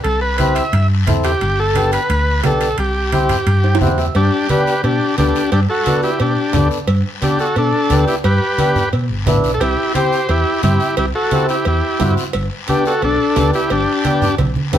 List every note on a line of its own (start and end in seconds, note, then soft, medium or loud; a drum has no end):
0.04 0.59 C2 loud
0.04 0.20 A4 medium
0.04 high conga soft
0.04 high timbale medium
0.04 long guiro medium
0.21 0.37 B4 medium
0.38 0.63 C4 medium
0.38 0.63 E4 medium
0.38 0.63 G4 medium
0.38 0.54 B4 medium
0.38 high conga medium
0.38 high timbale medium
0.38 short guiro medium
0.55 0.87 E5 medium
0.55 high timbale medium
0.55 short guiro medium
0.72 1.07 G2 medium
0.72 high conga soft
0.72 high timbale medium
0.72 long guiro medium
1.06 1.34 E2 medium
1.06 1.31 C4 medium
1.06 1.31 E4 medium
1.06 1.31 A4 medium
1.06 high conga medium
1.06 low conga medium
1.06 high timbale medium
1.06 short guiro medium
1.23 1.60 G4 medium
1.23 high timbale medium
1.23 short guiro medium
1.40 1.96 G1 loud
1.40 high conga soft
1.40 high timbale medium
1.40 long guiro medium
1.60 1.91 A4 loud
1.75 2.00 B3 medium
1.75 2.00 D4 medium
1.75 2.00 G4 medium
1.75 high conga medium
1.75 high timbale medium
1.75 short guiro medium
1.92 2.41 B4 loud
1.92 high timbale medium
1.92 short guiro medium
2.09 2.44 D2 loud
2.09 high conga soft
2.09 high timbale medium
2.09 long guiro medium
2.44 2.71 B1 medium
2.44 2.68 B3 medium
2.44 2.68 D4 medium
2.44 2.68 G4 medium
2.44 2.77 A4 medium
2.44 high conga medium
2.44 high timbale medium
2.44 low timbale medium
2.44 short guiro medium
2.61 high timbale medium
2.61 short guiro medium
2.78 3.33 C2 medium
2.78 3.78 G4 medium
2.78 high conga soft
2.78 high timbale medium
2.78 long guiro medium
3.12 3.37 C4 medium
3.12 3.37 E4 medium
3.12 3.37 G4 medium
3.12 high conga medium
3.12 high timbale medium
3.12 short guiro medium
3.29 low conga medium
3.29 high timbale medium
3.29 short guiro medium
3.46 3.81 G2 medium
3.46 high conga soft
3.46 high timbale medium
3.46 long guiro medium
3.64 3.80 G5 medium
3.64 high timbale medium
3.75 high timbale medium
3.81 4.08 E2 medium
3.81 4.05 C4 medium
3.81 4.05 E4 medium
3.81 4.05 G4 medium
3.81 3.97 F#5 medium
3.81 high conga medium
3.81 low conga medium
3.81 short guiro medium
3.87 low timbale medium
3.98 4.14 E5 medium
3.98 low timbale medium
3.98 short guiro medium
4.15 4.29 G2 loud
4.15 4.47 D4 medium
4.15 4.49 G4 loud
4.15 cowbell medium
4.15 high conga soft
4.15 long guiro medium
4.49 4.74 B3 medium
4.49 4.74 D4 medium
4.49 4.82 G4 medium
4.49 4.74 G4 medium
4.49 4.82 B4 medium
4.49 cowbell medium
4.49 high conga medium
4.49 short guiro medium
4.67 short guiro medium
4.84 4.97 B2 medium
4.84 5.16 D4 medium
4.84 5.16 G4 medium
4.84 cowbell medium
4.84 high conga soft
4.84 long guiro medium
5.17 5.31 D2 loud
5.17 5.41 B3 medium
5.17 5.42 D4 medium
5.17 5.50 D4 medium
5.17 5.50 G4 medium
5.17 5.42 A4 medium
5.17 cowbell medium
5.17 high conga medium
5.17 short guiro medium
5.35 short guiro medium
5.52 5.66 G2 loud
5.52 5.60 D4 medium
5.52 5.60 G4 medium
5.52 cowbell medium
5.52 high conga soft
5.52 long guiro medium
5.69 6.01 F#4 medium
5.69 6.01 A4 loud
5.86 6.10 B3 medium
5.86 6.10 D4 medium
5.86 6.10 F#4 medium
5.86 cowbell medium
5.86 high conga medium
5.86 short guiro medium
6.03 6.19 E4 medium
6.03 6.19 G4 medium
6.03 short guiro medium
6.20 6.34 B2 loud
6.20 6.69 D4 medium
6.20 6.68 G4 medium
6.20 cowbell medium
6.20 high conga soft
6.20 long guiro medium
6.53 6.68 D2 medium
6.53 6.78 B3 medium
6.53 6.78 D4 medium
6.53 6.78 A4 medium
6.53 cowbell medium
6.53 high conga medium
6.53 low conga medium
6.53 low timbale medium
6.53 short guiro medium
6.71 short guiro medium
6.88 7.02 G2 loud
6.88 cowbell loud
6.88 high conga soft
6.88 long guiro medium
7.22 7.46 B3 medium
7.22 7.46 D4 medium
7.22 7.39 D4 medium
7.22 7.46 G4 medium
7.22 7.39 G4 medium
7.22 cowbell medium
7.22 high conga medium
7.22 short guiro medium
7.39 7.56 F#4 medium
7.39 7.56 A4 medium
7.39 short guiro medium
7.56 7.70 B2 loud
7.56 8.05 D4 medium
7.56 8.05 A4 medium
7.56 cowbell medium
7.56 high conga soft
7.56 long guiro medium
7.90 8.04 D2 medium
7.90 8.14 B3 medium
7.90 8.14 D4 medium
7.90 8.15 G4 medium
7.90 cowbell medium
7.90 high conga medium
7.90 short guiro medium
8.08 8.16 E4 medium
8.08 8.15 G4 medium
8.08 short guiro medium
8.24 8.38 G2 loud
8.24 8.89 G4 medium
8.24 8.89 B4 medium
8.24 cowbell medium
8.24 long guiro medium
8.58 8.83 B3 medium
8.58 8.83 D4 medium
8.58 8.83 G4 medium
8.58 cowbell medium
8.58 high conga medium
8.58 short guiro medium
8.76 low conga medium
8.76 short guiro medium
8.92 9.07 B2 loud
8.92 cowbell medium
8.92 high conga soft
8.92 long guiro medium
9.09 9.25 G1 medium
9.26 9.42 A1 medium
9.26 9.51 B3 medium
9.26 9.51 D4 medium
9.26 9.51 E4 medium
9.26 cowbell medium
9.26 high conga medium
9.26 low conga medium
9.26 low timbale medium
9.26 short guiro medium
9.44 9.60 B1 medium
9.44 short guiro medium
9.54 9.61 A4 medium
9.60 9.75 C2 loud
9.60 9.93 E4 medium
9.60 9.92 G4 medium
9.60 cowbell loud
9.60 high conga soft
9.60 long guiro medium
9.95 10.19 C4 medium
9.95 10.19 E4 medium
9.95 10.19 G4 medium
9.95 10.27 G4 medium
9.95 10.30 C5 medium
9.95 cowbell medium
9.95 high conga medium
9.95 short guiro medium
10.12 short guiro medium
10.29 10.43 E2 medium
10.29 10.62 E4 medium
10.29 10.61 G4 loud
10.29 cowbell medium
10.29 high conga soft
10.29 long guiro medium
10.63 10.77 G2 loud
10.63 10.87 C4 medium
10.63 10.87 E4 medium
10.63 10.96 E4 medium
10.63 10.95 G4 medium
10.63 10.88 G4 medium
10.63 cowbell medium
10.63 high conga medium
10.63 short guiro medium
10.80 short guiro medium
10.97 11.11 C2 loud
10.97 11.06 E4 medium
10.97 11.06 G4 medium
10.97 cowbell loud
10.97 high conga soft
10.97 long guiro medium
11.15 11.47 F#4 medium
11.15 11.47 A4 medium
11.31 11.55 C4 medium
11.31 11.56 E4 medium
11.31 11.56 G4 medium
11.31 cowbell medium
11.31 high conga medium
11.31 short guiro medium
11.49 11.65 E4 medium
11.49 11.65 G4 medium
11.49 short guiro medium
11.65 11.80 E2 loud
11.65 12.14 E4 medium
11.65 12.15 G4 medium
11.65 cowbell medium
11.65 high conga soft
11.65 long guiro medium
12.00 12.14 G2 loud
12.00 12.24 C4 medium
12.00 12.24 E4 medium
12.00 12.24 F#4 medium
12.00 cowbell medium
12.00 high conga medium
12.00 low conga medium
12.00 low timbale medium
12.00 short guiro medium
12.17 short guiro medium
12.33 12.48 G1 loud
12.33 cowbell loud
12.33 high conga soft
12.33 long guiro medium
12.68 12.92 B3 medium
12.68 12.92 D4 medium
12.68 12.85 D4 medium
12.68 12.92 G4 medium
12.68 12.85 G4 medium
12.68 cowbell medium
12.68 high conga medium
12.68 short guiro medium
12.85 13.02 F#4 medium
12.85 13.03 A4 medium
12.85 short guiro medium
13.02 13.16 B1 loud
13.02 13.51 D4 medium
13.02 13.51 A4 loud
13.02 cowbell medium
13.02 high conga soft
13.02 long guiro medium
13.36 13.50 D2 loud
13.36 13.60 B3 medium
13.36 13.60 D4 medium
13.36 13.61 G4 medium
13.36 cowbell medium
13.36 high conga medium
13.36 low timbale medium
13.36 short guiro medium
13.53 13.70 E4 medium
13.53 13.70 G4 loud
13.53 short guiro medium
13.70 13.84 G1 loud
13.70 14.35 D4 medium
13.70 14.35 G4 medium
13.70 cowbell loud
13.70 high conga soft
13.70 long guiro medium
14.04 14.28 B3 medium
14.04 14.28 D4 medium
14.04 14.29 G4 medium
14.04 cowbell medium
14.04 high conga medium
14.04 short guiro medium
14.22 low conga medium
14.22 short guiro medium
14.38 14.52 B1 loud
14.38 cowbell medium
14.38 high conga loud
14.38 long guiro medium
14.56 high conga medium
14.73 14.78 D2 loud
14.73 14.78 B3 medium
14.73 14.78 D4 medium
14.73 14.78 G4 medium
14.73 cowbell medium
14.73 low conga medium
14.73 low timbale medium
14.73 short guiro medium